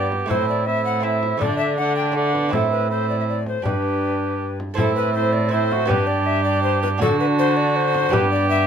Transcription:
0.00 0.26 G2 soft
0.00 0.30 G2 medium
0.00 0.25 B3 soft
0.00 0.29 B3 medium
0.00 0.25 D4 soft
0.00 0.26 G4 soft
0.00 0.32 G4 medium
0.12 frame drum soft
0.26 1.37 A2 medium
0.26 0.99 A3 soft
0.26 1.01 C4 soft
0.26 0.66 C4 medium
0.26 1.01 E4 soft
0.30 1.39 A2 medium
0.30 0.67 E4 medium
0.30 0.48 C5 medium
0.30 frame drum medium
0.49 0.68 D5 medium
0.66 1.03 C4 medium
0.66 1.04 E4 medium
0.66 0.84 E5 loud
0.85 1.05 F#5 medium
1.00 1.36 A3 soft
1.00 1.37 C4 soft
1.00 1.42 C4 medium
1.00 1.38 E4 soft
1.00 1.40 E5 medium
1.05 1.43 E4 medium
1.23 frame drum soft
1.37 2.49 D3 medium
1.37 2.11 A3 soft
1.37 1.77 A3 medium
1.37 2.12 D4 soft
1.37 1.57 D5 medium
1.41 2.55 D3 medium
1.41 1.79 D4 medium
1.41 frame drum medium
1.58 1.76 E5 medium
1.77 2.15 A3 medium
1.77 2.15 D4 medium
1.77 1.96 F#5 medium
1.96 2.17 G5 medium
2.12 2.48 A3 soft
2.12 2.35 A3 medium
2.12 2.50 D4 soft
2.12 2.52 F#5 medium
2.16 2.54 D4 medium
2.34 2.54 B3 medium
2.34 frame drum soft
2.49 3.61 A2 medium
2.49 3.60 A3 soft
2.49 3.61 C4 soft
2.49 2.89 C4 medium
2.49 3.61 E4 soft
2.49 2.89 E4 medium
2.49 2.71 A4 medium
2.53 3.65 A2 medium
2.53 frame drum medium
2.72 2.90 B4 medium
2.90 3.38 C4 medium
2.90 3.38 E4 soft
2.90 3.09 C5 medium
3.10 3.19 D5 medium
3.20 3.24 E5 medium
3.29 3.47 D5 medium
3.46 3.65 C5 medium
3.46 frame drum soft
3.62 4.58 G2 soft
3.62 4.56 G2 soft
3.62 4.74 D4 soft
3.62 4.56 D4 medium
3.62 4.74 G4 soft
3.62 4.56 G4 soft
3.62 4.58 B4 medium
3.62 frame drum medium
4.60 frame drum soft
4.74 5.86 A2 medium
4.74 5.47 A3 medium
4.74 5.48 C4 medium
4.74 5.50 E4 medium
4.78 5.92 A2 medium
4.78 5.13 C4 medium
4.78 5.14 E4 medium
4.78 4.95 A4 loud
4.78 frame drum medium
4.96 5.13 B4 medium
5.14 5.53 C4 medium
5.14 5.53 E4 medium
5.14 5.34 C5 loud
5.33 5.51 D5 medium
5.49 5.87 A3 soft
5.49 5.85 C4 soft
5.49 5.86 E4 soft
5.49 5.90 C5 medium
5.53 5.92 C4 medium
5.53 5.74 E4 medium
5.72 5.91 F#4 medium
5.72 frame drum medium
5.86 6.97 G2 medium
5.86 6.96 B3 medium
5.86 6.97 D4 medium
5.86 6.97 G4 medium
5.86 6.08 B4 medium
5.90 7.03 G2 medium
5.90 7.01 D4 medium
5.90 7.02 G4 medium
5.90 frame drum medium
6.07 6.28 D5 medium
6.26 6.44 E5 loud
6.44 6.62 D5 medium
6.63 6.82 C5 loud
6.82 6.88 B4 medium
6.82 frame drum medium
6.98 8.09 D3 medium
6.98 8.07 D4 medium
6.98 8.08 F#4 medium
7.02 8.13 D3 medium
7.02 8.11 D4 medium
7.02 8.16 F#4 medium
7.02 7.19 A4 loud
7.02 frame drum medium
7.20 7.26 B4 medium
7.39 7.58 C5 loud
7.57 7.78 D5 medium
7.76 8.15 C5 loud
7.95 frame drum medium
8.09 8.67 G2 medium
8.09 8.67 B3 medium
8.09 8.67 D4 medium
8.09 8.67 G4 medium
8.13 8.67 G2 medium
8.13 8.67 G4 medium
8.13 8.30 B4 loud
8.13 frame drum medium
8.31 8.49 D5 loud
8.50 8.67 E5 loud

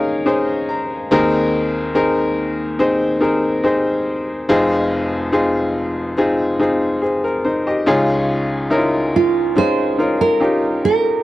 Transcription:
0.00 1.08 D#2 soft
0.00 1.08 D#3 soft
0.00 0.26 C#4 medium
0.00 0.26 D#4 medium
0.00 0.26 G#4 medium
0.00 1.12 A#4 medium
0.00 1.13 C#5 medium
0.00 0.24 F5 soft
0.26 1.07 C#4 medium
0.26 1.07 D#4 medium
0.26 1.07 G#4 medium
0.26 1.07 C5 medium
0.26 0.66 D#5 soft
0.69 1.08 A#5 soft
1.11 4.46 D#2 medium
1.11 4.46 D#3 medium
1.11 1.92 C4 medium
1.11 1.92 D#4 medium
1.11 1.92 G#4 medium
1.11 1.92 A#4 medium
1.94 2.76 C4 medium
1.94 2.76 D#4 medium
1.94 2.76 G#4 medium
1.94 2.76 A#4 medium
2.79 3.19 C4 medium
2.79 3.19 D#4 medium
2.79 3.20 G#4 medium
2.79 3.20 C5 medium
3.21 3.62 C4 medium
3.21 3.62 D#4 soft
3.21 3.62 G#4 medium
3.21 3.62 A#4 medium
3.64 4.45 C4 medium
3.64 4.45 D#4 medium
3.64 4.45 G#4 medium
3.64 4.45 C5 medium
4.49 7.83 F1 medium
4.49 7.83 F2 medium
4.49 5.29 C4 medium
4.49 5.30 D#4 medium
4.49 5.30 F4 medium
4.49 5.30 G#4 medium
5.32 6.13 C4 medium
5.32 6.14 D#4 medium
5.32 6.14 F4 medium
5.32 6.14 G#4 medium
6.17 6.58 C4 medium
6.17 6.58 D#4 medium
6.17 6.58 F4 medium
6.17 6.59 G#4 medium
6.59 7.00 C4 medium
6.59 7.00 D#4 soft
6.59 7.00 F4 soft
6.59 7.00 G#4 medium
7.02 7.23 C4 soft
7.02 7.22 G#4 soft
7.24 7.44 A#4 soft
7.45 7.65 D#4 soft
7.45 7.65 C5 soft
7.67 8.07 G4 soft
7.67 8.07 D#5 soft
7.86 11.21 C#2 medium
7.86 11.21 C#3 medium
7.86 8.67 C#4 medium
7.86 8.68 D#4 medium
7.86 8.68 F4 medium
7.86 8.68 G#4 medium
8.70 9.51 C#4 medium
8.70 9.52 D#4 medium
8.70 8.78 E4 soft
8.70 9.52 A#4 medium
8.77 9.55 F4 medium
9.16 9.55 F4 medium
9.56 9.96 C#4 soft
9.56 9.97 D#4 soft
9.56 9.97 F4 soft
9.56 9.97 G#4 medium
9.56 10.17 C5 medium
9.98 10.38 C#4 soft
9.98 10.39 D#4 soft
9.98 10.39 F4 soft
9.98 10.39 A#4 medium
10.21 10.84 A#4 medium
10.40 11.21 C#4 soft
10.40 11.21 D#4 soft
10.40 11.21 F4 soft
10.40 11.21 G4 medium
10.85 11.23 A#4 medium

